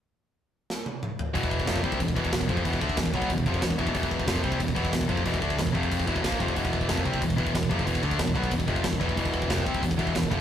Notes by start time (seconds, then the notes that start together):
0.70 snare
0.86 high tom
1.03 mid tom
1.19 floor tom
1.34 E1 E2 B2 E3, kick, crash
1.43 kick
1.51 kick
1.59 kick
1.66 F1 F2 C3 F3, kick, snare, crash
1.76 kick
1.83 C2 C3 G3 C4, kick
1.92 kick
2.00 E1 E2 B2, kick, crash
2.08 kick
2.15 E1 E2 B2 E3, kick
2.25 kick
2.32 E1 E2 B2, kick, snare, crash
2.41 kick
2.48 F1 F2 C3 F3, kick
2.57 kick
2.64 E1 E2 B2 E3, kick, crash
2.73 kick
2.81 D2 D3 A3 D4, kick
2.89 kick
2.97 E1 E2 B2, kick, snare, crash
3.06 kick
3.14 B1 B2 F#3 B3, kick
3.22 kick
3.30 E1 E2 B2, kick, crash
3.38 kick
3.46 F1 F2 C3 F3, kick
3.54 kick
3.62 E1 E2 B2, kick, snare, crash
3.70 kick
3.78 E1 E2 B2 E3, kick
3.87 kick
3.94 E1 E2 B2 E3, kick, crash
4.03 kick
4.11 kick
4.20 kick
4.26 F1 F2 C3 F3, kick, snare, crash
4.36 kick
4.42 C2 C3 G3 C4, kick
4.52 kick
4.59 E1 E2 B2, kick, crash
4.68 kick
4.75 E1 E2 B2 E3, kick
4.85 kick
4.93 E1 E2 B2, kick, snare, crash
5.01 kick
5.08 F1 F2 C3 F3, kick
5.17 kick
5.24 E1 E2 B2 E3, kick, crash
5.34 kick
5.40 D2 D3 A3 D4, kick
5.50 kick
5.57 E1 E2 B2, kick, snare, crash
5.67 kick
5.72 F1 F2 C3 F3, kick
5.83 kick
5.92 kick, crash
6.00 kick
6.06 E1 E2 B2 E3, kick
6.16 kick
6.22 A#1 A#2 F3 A#3, kick, snare, crash
6.32 kick
6.39 F1 F2 C3 F3, kick
6.48 kick
6.55 E1 E2 B2 E3, kick, crash
6.65 kick
6.73 kick
6.81 kick
6.88 F1 F2 C3 F3, kick, snare, crash
6.97 kick
7.05 C2 C3 G3 C4, kick
7.14 kick
7.21 E1 E2 B2, kick, crash
7.30 kick
7.36 E1 E2 B2 E3, kick
7.47 kick
7.54 E1 E2 B2, kick, snare, crash
7.63 kick
7.69 F1 F2 C3 F3, kick
7.79 kick
7.85 E1 E2 B2 E3, kick, crash
7.95 kick
8.03 D2 D3 A3 D4, kick
8.11 kick
8.19 E1 E2 B2, kick, snare, crash
8.27 kick
8.35 B1 B2 F#3 B3, kick
8.44 kick
8.51 E1 E2 B2, kick, crash
8.60 kick
8.68 F1 F2 C3 F3, kick
8.76 kick
8.84 E1 E2 B2, kick, snare, crash
8.93 kick
9.00 E1 E2 B2 E3, kick
9.09 kick
9.17 E1 E2 B2 E3, kick, crash
9.25 kick
9.34 kick
9.42 kick
9.50 F1 F2 C3 F3, kick, snare, crash
9.58 kick
9.66 C2 C3 G3 C4, kick
9.75 kick
9.82 E1 E2 B2, kick, crash
9.91 kick
9.98 E1 E2 B2 E3, kick
10.07 kick
10.15 E1 E2 B2, kick, snare, crash
10.23 kick
10.31 F1 F2 C3 F3, kick